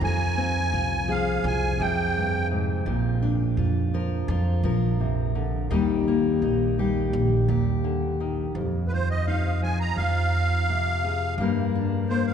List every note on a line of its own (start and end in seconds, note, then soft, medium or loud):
0.01 0.69 F2 medium
0.01 2.15 F2 medium
0.01 0.73 F4 medium
0.01 1.13 G#5 medium
0.37 2.83 C4 medium
0.72 1.40 C2 medium
0.72 1.44 F4 medium
1.08 3.93 F3 medium
1.08 1.79 G#4 medium
1.08 1.46 F5 medium
1.44 1.78 C2 medium
1.44 2.83 F4 medium
1.44 1.82 G#5 medium
1.80 2.83 F2 medium
1.80 2.87 C3 medium
1.80 2.83 G#4 medium
1.80 2.48 G5 medium
2.16 2.51 G2 medium
2.51 2.86 G#2 medium
2.86 3.54 A#1 medium
2.86 5.67 A#2 medium
2.86 3.57 F4 medium
3.23 5.67 D4 medium
3.57 4.25 F2 medium
3.57 4.29 F4 medium
3.94 4.63 F3 medium
3.94 4.64 A#4 medium
4.28 4.62 F2 loud
4.28 5.68 F4 medium
4.63 5.67 A#1 medium
4.63 5.00 F3 medium
4.63 5.67 A#4 medium
5.00 5.35 C3 medium
5.35 5.70 D3 medium
5.71 6.39 D#2 medium
5.71 7.84 D#3 medium
5.71 6.78 G3 medium
5.71 6.07 A#3 medium
5.71 6.42 D#4 medium
5.71 6.78 G4 medium
6.08 8.56 A#3 medium
6.42 7.10 A#1 medium
6.42 7.14 D#4 medium
6.79 8.52 G3 medium
6.79 7.48 G4 medium
7.13 7.47 A#1 medium
7.48 8.51 D#2 medium
7.48 8.51 A#2 medium
7.48 8.52 G4 medium
7.84 8.20 D3 medium
8.20 8.56 D#3 medium
8.55 9.93 F2 medium
8.55 11.39 F2 medium
8.88 8.92 B4 soft
8.92 9.97 F4 soft
8.92 9.09 C5 medium
9.10 9.26 D#5 medium
9.27 11.35 D#4 medium
9.27 9.61 F5 medium
9.62 11.39 F3 medium
9.62 9.79 G#5 medium
9.80 9.96 A#5 medium
9.97 11.35 F2 medium
9.97 11.35 F4 medium
9.97 11.35 F5 medium
10.69 11.40 C3 medium
11.04 11.35 G#4 medium
11.38 12.34 G2 medium
11.38 12.34 G3 medium
11.38 12.10 A#3 medium
11.42 11.75 D4 medium
11.42 12.34 A#4 medium
11.75 12.34 D4 medium
12.09 12.34 A#3 medium
12.09 12.26 C5 medium
12.26 12.34 F5 medium